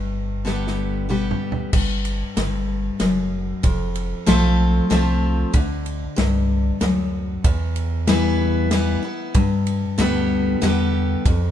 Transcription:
Already playing: analog synth bass G1, steel-string acoustic guitar G2
0.45 steel-string acoustic guitar D3 G3 B3 G4, snare
0.67 snare
1.09 steel-string acoustic guitar D3 G3 B3 G4, mid tom
1.31 mid tom
1.52 floor tom
1.73 analog synth bass G1, steel-string acoustic guitar G2, kick, crash
2.05 ride
2.37 analog synth bass G1, steel-string acoustic guitar G2, snare, ride
3.00 analog synth bass F#1, steel-string acoustic guitar F#2, snare, ride
3.63 analog synth bass F1, steel-string acoustic guitar F2, kick, ride
3.95 ride
4.26 analog synth bass B1, steel-string acoustic guitar F3 A3 C4 F4, snare, ride
4.90 analog synth bass C2, steel-string acoustic guitar F3 A3 C4 F4, snare, ride
5.53 analog synth bass D2, steel-string acoustic guitar D3, kick, ride
5.86 ride
6.16 analog synth bass C2, steel-string acoustic guitar G2, snare, ride
6.81 analog synth bass D2, steel-string acoustic guitar F#2, snare, ride
7.44 steel-string acoustic guitar E2, analog synth bass E2, kick, ride
7.76 ride
8.07 steel-string acoustic guitar E3 G3 B3 E4, snare, ride
8.71 steel-string acoustic guitar E3 G3 B3 E4, snare, ride
9.03 steel-string acoustic guitar B3 E4
9.34 steel-string acoustic guitar G2, analog synth bass G2, kick, ride
9.67 ride
9.98 analog synth bass D2, steel-string acoustic guitar D3 G3 B3 G4, snare, ride
10.62 analog synth bass E2, steel-string acoustic guitar D3 G3 B3 G4, snare, ride
11.25 analog synth bass F2, steel-string acoustic guitar F2, kick, ride

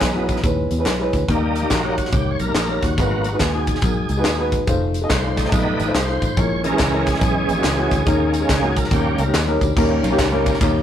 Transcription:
Already playing: upright piano C#3, tonewheel organ E3 B3 D#4
0.01 fingered electric bass B1, kick, snare, clap, closed hi-hat, tambourine
0.14 upright piano G#3 C#4 E4 F#4
0.28 tonewheel organ E3 B3 D#4, kick, closed hi-hat, tambourine
0.36 snare
0.43 fingered electric bass D#2, upright piano G#3 C#4 E4 B4, kick, closed hi-hat, tambourine
0.71 fingered electric bass E2, closed hi-hat, tambourine
0.78 upright piano G#3 C#4 E4 B4
0.86 fingered electric bass B1, snare, clap, closed hi-hat, tambourine
0.99 upright piano G#3 C#4 E4 B4
1.13 fingered electric bass D2, kick, closed hi-hat, tambourine
1.28 fingered electric bass D#2, upright piano D#3 G3 A#3 D#4 A#4, tonewheel organ G3 A#3 D#4, kick, closed hi-hat, tambourine
1.56 closed hi-hat, tambourine
1.62 upright piano G3 A#3 D#4 G4
1.70 fingered electric bass A#1, tonewheel organ F#4, kick, snare, clap, closed hi-hat, tambourine
1.83 upright piano G3 A#3 D#4 C#5
1.98 kick, closed hi-hat, tambourine
2.05 snare
2.12 fingered electric bass C#2, upright piano G3 A#3 D#4 C#5, tonewheel organ G4, kick, closed hi-hat, tambourine
2.31 tonewheel organ C#5
2.39 fingered electric bass B1, tonewheel organ A#4, closed hi-hat, tambourine
2.47 upright piano G3 A#3 D#4 A#4
2.55 fingered electric bass A#1, snare, clap, closed hi-hat, tambourine
2.68 upright piano G3 A#3 D#4 C#5
2.82 fingered electric bass D#2, tonewheel organ F#4, kick, closed hi-hat, tambourine
2.98 fingered electric bass G#1, upright piano G#2 G#3 D#4 F#4 B4, tonewheel organ F#3 A#3 B3, kick, closed hi-hat, tambourine
3.24 closed hi-hat, tambourine
3.32 upright piano G#3 D#4 F#4 B4
3.39 fingered electric bass D#2, tonewheel organ G#4, kick, snare, clap, closed hi-hat, tambourine
3.53 upright piano G#3 D#4 F#4 G#4
3.67 kick, closed hi-hat, tambourine
3.75 snare
3.82 fingered electric bass B1, upright piano G#3 D#4 F#4 A#4, kick, closed hi-hat, tambourine
4.09 fingered electric bass C#2, closed hi-hat, tambourine
4.17 upright piano G#3 D#4 F#4 B4
4.24 fingered electric bass D#2, snare, clap, closed hi-hat, tambourine
4.38 upright piano G#3 D#4 F#4 B4
4.52 kick, closed hi-hat, tambourine
4.67 fingered electric bass F1, upright piano A3 D#4 F4 C5, kick, closed hi-hat, tambourine
4.94 closed hi-hat, tambourine
5.02 upright piano A3 D#4 F4 D#5
5.09 fingered electric bass C2, tonewheel organ C5, kick, snare, clap, closed hi-hat, tambourine
5.22 upright piano A3 D#4 F4 D5
5.36 tonewheel organ G3 A3 D#4, kick, snare, closed hi-hat, tambourine
5.45 snare
5.51 fingered electric bass B1, upright piano A3 D#4 F4 D#5, tonewheel organ B4, kick, closed hi-hat, tambourine
5.80 fingered electric bass A1, closed hi-hat, tambourine
5.86 upright piano A3 D#4 F4 C5
5.95 fingered electric bass C2, tonewheel organ C5, snare, clap, closed hi-hat, tambourine
6.08 upright piano A3 D#4 F4 C5
6.22 fingered electric bass A1, kick, closed hi-hat, tambourine
6.36 fingered electric bass A#1, upright piano A#2 G#3 C#4 E4 A#4, tonewheel organ C#5, kick, closed hi-hat, tambourine
6.64 tonewheel organ E3 G#3 C#4 A#4, closed hi-hat, tambourine
6.71 upright piano G#3 C#4 E4 G#4
6.79 fingered electric bass C#2, kick, snare, clap, closed hi-hat, tambourine
6.92 upright piano G#3 C#4 E4 A#4
7.06 tonewheel organ G#4, kick, snare, closed hi-hat, tambourine
7.15 tonewheel organ A#4, snare
7.21 fingered electric bass B1, upright piano G#3 C#4 E4 G#4, tonewheel organ G#4, kick, closed hi-hat, tambourine
7.48 fingered electric bass A#1, closed hi-hat, tambourine
7.56 upright piano G#3 C#4 E4 F#4
7.64 fingered electric bass C#2, snare, clap, closed hi-hat, tambourine
7.77 upright piano G#3 C#4 E4 F#4
7.91 fingered electric bass D2, kick, closed hi-hat, tambourine
8.05 fingered electric bass D#2, upright piano D#3 G#3 C#4 D#4 A#4, tonewheel organ G#3 A#3 C#4, kick, closed hi-hat, tambourine
8.34 closed hi-hat, tambourine
8.40 upright piano G#3 C#4 D#4 A#4
8.49 fingered electric bass C#2, tonewheel organ G#4, kick, snare, clap, closed hi-hat, tambourine
8.61 upright piano G#3 C#4 D#4 F#4
8.77 tonewheel organ A#4, kick, closed hi-hat, tambourine
8.84 snare
8.91 fingered electric bass D#2, upright piano D#3 G3 C#4 D#4 A#4, tonewheel organ G3 A#3 C#4 G4, kick, closed hi-hat, tambourine
9.18 fingered electric bass C#2, tonewheel organ A#4, closed hi-hat, tambourine
9.26 upright piano G3 C#4 D#4 G4
9.34 fingered electric bass D#2, snare, clap, closed hi-hat, tambourine
9.47 upright piano G3 C#4 D#4 A#4
9.61 fingered electric bass D2, kick, closed hi-hat, tambourine
9.76 fingered electric bass D#2, upright piano D#3 G3 A#3 C#4 D#4 A#4, tonewheel organ G3 A#3 C#4, kick, crash, tambourine
10.03 fingered electric bass B1, ride bell, tambourine
10.10 upright piano G3 A#3 C#4 D#4 G4
10.19 fingered electric bass C#2, kick, snare, clap, ride bell, tambourine
10.32 upright piano G3 A#3 C#4 D#4 A#4
10.46 tonewheel organ G3 A#3 C#4, kick, ride bell, tambourine
10.54 snare
10.61 fingered electric bass D#2, upright piano G3 A#3 C#4 D#4 A#4, kick, clap, ride bell, tambourine

